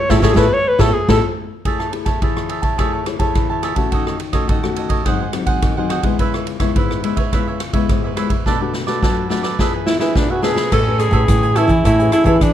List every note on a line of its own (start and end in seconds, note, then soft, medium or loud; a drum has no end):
0.00 0.13 C#5 loud
0.10 0.21 A2 medium
0.10 0.19 E4 loud
0.10 0.25 E4 medium
0.10 0.19 G#4 loud
0.10 0.19 A4 loud
0.10 0.19 A4 medium
0.10 0.19 C#5 medium
0.10 0.19 E5 loud
0.10 kick medium
0.10 snare medium
0.22 0.33 A2 loud
0.22 0.32 E4 loud
0.22 0.32 G#4 loud
0.22 0.39 G#4 loud
0.22 0.32 A4 loud
0.22 0.33 A4 medium
0.22 0.32 C#5 loud
0.22 0.33 E5 loud
0.22 kick medium
0.22 snare medium
0.34 0.47 A2 medium
0.34 0.46 E4 loud
0.34 0.46 G#4 loud
0.34 0.46 A4 medium
0.34 0.55 B4 medium
0.34 0.46 C#5 medium
0.34 0.46 E5 loud
0.34 kick medium
0.34 snare medium
0.54 0.70 C#5 loud
0.68 0.82 B4 medium
0.79 0.90 A2 loud
0.79 0.89 E4 loud
0.79 0.89 G#4 loud
0.79 0.89 A4 loud
0.79 0.89 A4 medium
0.79 0.95 A4 loud
0.79 0.89 C#5 medium
0.79 0.89 E5 loud
0.79 kick medium
0.79 snare medium
0.94 1.08 G#4 medium
1.09 1.19 A2 loud
1.09 1.18 E4 loud
1.09 1.18 G#4 loud
1.09 1.18 A4 medium
1.09 1.26 A4 medium
1.09 1.18 A4 loud
1.09 1.18 C#5 medium
1.09 1.18 E5 medium
1.09 kick medium
1.09 snare medium
1.65 2.19 A3 medium
1.65 1.89 E4 soft
1.65 1.78 G#4 medium
1.65 1.89 G#4 medium
1.65 1.79 C#5 medium
1.65 1.90 C#5 medium
1.65 1.79 E5 medium
1.65 1.78 A5 medium
1.65 kick medium
1.65 ride soft
1.79 1.92 C#5 soft
1.79 1.92 E5 soft
1.79 1.92 A5 soft
1.79 cross-stick medium
1.92 2.10 E4 medium
1.92 2.10 G#4 soft
1.92 2.10 C#5 medium
1.92 muted cavaquinho stroke soft
1.92 ride soft
2.05 2.21 C#5 soft
2.05 2.20 E5 medium
2.05 2.20 A5 medium
2.05 kick medium
2.05 cross-stick medium
2.05 ride soft
2.21 2.76 E3 medium
2.21 2.75 E4 medium
2.21 2.48 G#4 soft
2.21 2.75 G#4 medium
2.21 2.49 C#5 soft
2.21 2.75 C#5 medium
2.21 2.49 E5 soft
2.21 2.50 A5 soft
2.21 kick medium
2.21 ride soft
2.37 cross-stick medium
2.49 2.63 G#4 soft
2.49 2.63 C#5 soft
2.49 2.62 E5 soft
2.49 2.61 A5 medium
2.49 ride soft
2.62 2.78 C#5 medium
2.62 2.77 E5 medium
2.62 2.77 A5 medium
2.62 kick medium
2.62 ride soft
2.78 3.33 A3 medium
2.78 3.03 E4 medium
2.78 2.92 G#4 medium
2.78 3.03 G#4 soft
2.78 2.92 C#5 medium
2.78 3.04 C#5 medium
2.78 2.92 E5 medium
2.78 2.92 A5 medium
2.78 kick medium
2.78 cross-stick medium
2.78 ride soft
2.93 3.05 C#5 soft
2.93 3.06 E5 soft
2.93 3.06 A5 soft
3.06 3.16 E4 medium
3.06 3.16 G#4 soft
3.06 3.16 C#5 medium
3.06 muted cavaquinho stroke soft
3.06 cross-stick medium
3.06 ride soft
3.19 3.73 E4 medium
3.19 3.73 G#4 medium
3.19 3.73 C#5 medium
3.19 3.49 C#5 soft
3.19 3.48 E5 medium
3.19 3.48 A5 medium
3.19 kick medium
3.19 ride soft
3.35 3.90 E3 medium
3.35 kick medium
3.35 cross-stick medium
3.35 ride soft
3.50 3.62 C#5 soft
3.50 3.63 E5 soft
3.50 3.63 A5 soft
3.62 3.76 G#4 medium
3.62 3.76 C#5 medium
3.62 3.76 E5 medium
3.62 3.74 A5 medium
3.62 cross-stick medium
3.62 ride soft
3.76 4.16 A3 medium
3.76 4.16 C#4 medium
3.76 4.16 F#4 medium
3.76 3.91 C#5 soft
3.76 3.91 E5 soft
3.76 3.90 A5 soft
3.76 kick medium
3.76 ride soft
3.92 4.47 D#3 medium
3.92 4.05 F#4 medium
3.92 4.06 A4 medium
3.92 4.06 C#5 medium
3.92 4.05 D#5 medium
3.92 kick medium
3.92 ride soft
4.06 4.18 A4 soft
4.06 4.19 C#5 soft
4.06 4.19 D#5 soft
4.06 cross-stick medium
4.19 muted cavaquinho stroke soft
4.19 ride soft
4.33 4.58 A3 medium
4.33 4.58 C#4 medium
4.33 4.58 F#4 medium
4.33 4.48 A4 medium
4.33 4.48 C#5 medium
4.33 4.47 D#5 medium
4.33 kick medium
4.33 cross-stick medium
4.33 ride soft
4.48 5.03 D#3 medium
4.48 4.74 F#4 soft
4.48 4.75 A4 soft
4.48 4.76 C#5 soft
4.48 4.77 D#5 medium
4.48 kick medium
4.48 ride soft
4.64 5.02 A3 medium
4.64 5.02 C#4 medium
4.64 5.02 F#4 medium
4.64 cross-stick medium
4.76 4.90 F#4 soft
4.76 4.90 A4 soft
4.76 4.89 C#5 medium
4.76 4.88 D#5 medium
4.76 ride soft
4.89 5.05 A4 medium
4.89 5.04 C#5 medium
4.89 5.04 D#5 medium
4.89 kick medium
4.89 ride soft
5.05 5.60 G#2 medium
5.05 5.23 F#3 medium
5.05 5.23 C4 medium
5.05 5.23 D#4 medium
5.05 5.19 F#4 medium
5.05 5.19 G#4 medium
5.05 5.19 C5 medium
5.05 5.19 F#5 medium
5.05 kick medium
5.05 cross-stick medium
5.05 ride soft
5.20 5.33 G#4 soft
5.20 5.33 C5 soft
5.20 5.33 F#5 soft
5.33 5.72 F#3 medium
5.33 5.72 C4 medium
5.33 5.72 D#4 medium
5.33 muted cavaquinho stroke soft
5.33 cross-stick medium
5.33 ride soft
5.46 5.76 G#4 soft
5.46 5.75 C5 medium
5.46 5.75 F#5 medium
5.46 kick medium
5.46 ride soft
5.62 6.17 D#3 medium
5.62 kick medium
5.62 cross-stick medium
5.62 ride soft
5.77 6.01 F#3 medium
5.77 6.01 C4 medium
5.77 6.02 D#4 medium
5.77 5.89 G#4 soft
5.77 5.90 C5 soft
5.77 5.90 F#5 soft
5.89 6.03 F#4 medium
5.89 6.04 G#4 medium
5.89 6.03 C5 medium
5.89 6.02 F#5 medium
5.89 cross-stick medium
5.89 ride soft
6.03 6.57 G#3 medium
6.03 6.57 B3 medium
6.03 6.57 E4 medium
6.03 6.18 G#4 soft
6.03 6.18 C5 soft
6.03 6.17 F#5 soft
6.03 kick medium
6.03 ride soft
6.19 6.73 C#3 medium
6.19 6.32 E4 medium
6.19 6.33 B4 medium
6.19 6.33 C#5 medium
6.19 6.33 E5 medium
6.19 kick medium
6.19 ride soft
6.34 6.46 B4 soft
6.34 6.46 C#5 soft
6.34 6.47 E5 soft
6.34 cross-stick medium
6.47 muted cavaquinho stroke soft
6.47 ride soft
6.60 6.99 G#3 medium
6.60 6.99 B3 medium
6.60 6.99 E4 medium
6.60 6.75 B4 medium
6.60 6.74 C#5 soft
6.60 6.74 E5 medium
6.60 kick medium
6.60 cross-stick medium
6.60 ride soft
6.76 7.30 G#2 medium
6.76 7.02 E4 soft
6.76 7.03 B4 soft
6.76 7.04 C#5 medium
6.76 7.04 E5 medium
6.76 kick medium
6.76 ride soft
6.91 cross-stick medium
7.03 7.21 G#3 medium
7.03 7.21 B3 soft
7.03 7.17 E4 soft
7.03 7.21 E4 medium
7.03 7.18 B4 soft
7.03 7.16 C#5 medium
7.03 7.15 E5 soft
7.03 ride soft
7.16 7.32 B4 soft
7.16 7.31 C#5 medium
7.16 7.31 E5 medium
7.16 kick medium
7.16 ride soft
7.32 7.87 C#3 medium
7.32 7.59 G#3 soft
7.32 7.60 B3 soft
7.32 7.46 E4 medium
7.32 7.60 E4 medium
7.32 7.46 B4 medium
7.32 7.47 C#5 medium
7.32 7.46 E5 medium
7.32 kick medium
7.32 cross-stick medium
7.32 ride soft
7.47 7.60 B4 soft
7.47 7.60 C#5 soft
7.47 7.60 E5 soft
7.60 muted cavaquinho stroke soft
7.60 cross-stick medium
7.60 ride soft
7.73 8.12 G#3 medium
7.73 8.12 B3 medium
7.73 8.13 E4 medium
7.73 8.03 B4 medium
7.73 8.02 C#5 medium
7.73 8.02 E5 medium
7.73 kick medium
7.73 ride soft
7.89 8.43 G#2 medium
7.89 kick medium
7.89 cross-stick medium
7.89 ride soft
8.04 8.16 B4 soft
8.04 8.17 C#5 soft
8.04 8.17 E5 soft
8.16 8.34 G#3 medium
8.16 8.35 B3 medium
8.16 8.30 E4 medium
8.16 8.35 E4 medium
8.16 8.30 B4 medium
8.16 8.30 C#5 medium
8.16 8.28 E5 medium
8.16 cross-stick medium
8.16 ride soft
8.30 8.45 B4 soft
8.30 8.44 C#5 soft
8.30 8.44 E5 soft
8.30 kick medium
8.30 ride soft
8.46 9.00 B2 medium
8.46 8.55 A3 soft
8.46 8.59 D4 medium
8.46 8.55 D4 medium
8.46 8.55 F#4 medium
8.46 8.59 A4 medium
8.46 8.60 B4 medium
8.46 8.60 D5 medium
8.46 kick medium
8.46 snare soft
8.61 8.84 A3 medium
8.61 8.85 D4 medium
8.61 8.85 F#4 medium
8.61 8.73 A4 soft
8.61 8.73 B4 soft
8.61 8.74 D5 soft
8.73 muted cavaquinho stroke soft
8.73 snare soft
8.87 9.26 A3 medium
8.87 9.26 D4 medium
8.87 9.26 F#4 medium
8.87 9.02 A4 medium
8.87 9.01 B4 medium
8.87 9.01 D5 medium
8.87 snare soft
9.02 9.57 F#3 medium
9.02 9.28 D4 soft
9.02 9.29 A4 soft
9.02 9.30 B4 medium
9.02 9.30 D5 medium
9.02 kick medium
9.02 snare soft
9.29 9.48 A3 soft
9.29 9.43 D4 soft
9.29 9.48 D4 soft
9.29 9.48 F#4 medium
9.29 9.44 A4 soft
9.29 9.43 B4 soft
9.29 9.42 D5 medium
9.29 snare soft
9.43 9.58 A4 soft
9.43 9.58 B4 medium
9.43 9.57 D5 medium
9.43 snare soft
9.59 10.13 E3 medium
9.59 9.72 D4 medium
9.59 9.97 D4 medium
9.59 9.72 G#4 medium
9.59 9.97 G#4 medium
9.59 9.98 B4 medium
9.59 9.73 B4 medium
9.59 9.72 E5 medium
9.59 kick medium
9.59 snare medium
9.74 9.86 G#4 soft
9.74 9.86 B4 soft
9.74 9.87 E5 soft
9.86 9.99 E4 medium
9.86 muted cavaquinho stroke soft
9.86 snare medium
9.99 10.39 D4 medium
9.99 10.17 E4 medium
9.99 10.39 G#4 medium
9.99 10.29 G#4 medium
9.99 10.28 B4 medium
9.99 10.39 B4 medium
9.99 10.28 E5 medium
9.99 snare soft
10.15 10.69 B2 medium
10.15 10.32 D4 medium
10.15 kick medium
10.15 snare medium
10.30 10.42 F#4 medium
10.30 10.42 G#4 soft
10.30 10.43 B4 soft
10.30 10.43 E5 soft
10.42 10.56 D4 medium
10.42 10.62 D4 soft
10.42 10.70 G#4 medium
10.42 10.57 G#4 medium
10.42 10.62 G#4 soft
10.42 10.62 B4 medium
10.42 10.56 B4 medium
10.42 10.55 E5 medium
10.42 snare medium
10.56 10.71 B4 soft
10.56 10.70 E5 soft
10.56 snare medium
10.72 11.08 A2 medium
10.72 11.26 A3 medium
10.72 10.82 C#4 medium
10.72 10.82 G#4 medium
10.72 10.98 A4 medium
10.72 11.01 A4 loud
10.72 10.82 B4 medium
10.72 10.99 C#5 medium
10.72 10.99 E5 medium
10.72 11.00 G#5 medium
10.72 kick medium
10.72 cross-stick medium
10.72 crash medium
10.87 11.10 C#4 medium
10.87 11.11 G#4 medium
10.87 11.11 B4 medium
10.99 11.58 G#4 medium
10.99 11.11 A4 soft
10.99 11.11 C#5 medium
10.99 11.12 E5 soft
10.99 11.12 G#5 medium
10.99 cross-stick medium
10.99 closed hi-hat soft
11.11 11.24 A2 medium
11.11 11.52 C#4 medium
11.11 11.52 G#4 medium
11.11 11.22 A4 medium
11.11 11.52 B4 medium
11.11 11.23 C#5 medium
11.11 11.23 E5 medium
11.11 11.23 G#5 medium
11.11 kick medium
11.11 closed hi-hat soft
11.28 11.65 A2 medium
11.28 11.83 E3 medium
11.28 kick medium
11.28 cross-stick medium
11.28 closed hi-hat medium
11.43 11.55 C#5 soft
11.43 11.56 E5 soft
11.43 11.56 G#5 soft
11.43 closed hi-hat soft
11.55 11.83 C#4 soft
11.55 11.85 E4 medium
11.55 11.83 G#4 medium
11.55 11.69 A4 medium
11.55 11.84 B4 medium
11.55 11.70 C#5 medium
11.55 11.69 E5 medium
11.55 11.68 G#5 medium
11.55 cross-stick medium
11.55 closed hi-hat soft
11.68 11.81 E3 medium
11.68 11.84 C#5 soft
11.68 11.84 E5 soft
11.68 11.83 G#5 soft
11.68 kick medium
11.68 closed hi-hat soft
11.85 12.09 A2 loud
11.85 12.39 A3 medium
11.85 12.12 E4 medium
11.85 11.98 A4 medium
11.85 11.98 C#5 medium
11.85 11.99 E5 medium
11.85 11.98 G#5 medium
11.85 kick medium
11.85 cross-stick medium
11.85 closed hi-hat medium
11.99 12.24 C#4 medium
11.99 12.24 G#4 medium
11.99 12.24 B4 medium
11.99 12.11 C#5 soft
11.99 12.12 E5 soft
11.99 12.12 G#5 soft
11.99 closed hi-hat soft
12.12 12.26 E4 medium
12.12 12.24 A4 soft
12.12 12.24 C#5 soft
12.12 12.25 E5 medium
12.12 12.25 G#5 medium
12.12 cross-stick medium
12.12 closed hi-hat soft
12.24 12.38 E3 medium
12.24 12.53 C#4 medium
12.24 12.44 E4 medium
12.24 12.53 G#4 medium
12.24 12.35 A4 medium
12.24 12.53 B4 medium
12.24 12.36 C#5 medium
12.24 12.36 E5 medium
12.24 12.36 G#5 medium
12.24 kick medium
12.24 closed hi-hat soft
12.41 12.53 E3 medium
12.41 12.53 D4 medium
12.41 kick medium
12.41 cross-stick medium
12.41 closed hi-hat medium